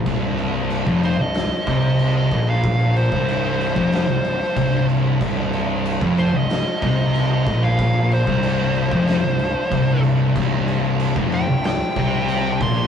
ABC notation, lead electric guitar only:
X:1
M:4/4
L:1/16
Q:1/4=93
K:Cm
V:1 name="Lead electric guitar"
z6 c e6 e2 f- | f2 c12 z2 | z6 c e6 e2 f- | f2 c12 z2 |
z6 g2 g6 c'2 |]